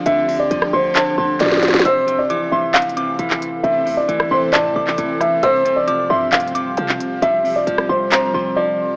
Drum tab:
HH |x-----------o-----------x-----------------------x-----------------------x-----------x-----------|x-----------x-----------x-----------------------x---x---x---x-----------x-----------x-----------|x-----------o-----------x-----------------------x-----------------------x-----------x-----------|x-----------x-----------x-----------------------x---x---x---x-----------x-----------x-----------|
CP |------------------------------------------------x-----------------------------------------------|------------------------------------------------x-----------------------------x-----------------|------------------------------------------------x-----------------x-----------------------------|------------------------------------------------x-----------------------------x-----------------|
SD |------------------------------r-----------------------------------------o--o--o--o--o--o--o--o--|------------------------------------------------------------------------------------------------|------------------------------r-----------------------------------------------------r-----------|------------------------------------------------------------------------------------------------|

HH |x-----------o-----------x-----------------------x-----------------------------------------------|
CP |------------------------------------------------x-----------------------------------------------|
SD |------------------------------r-----------------------------------------------------------------|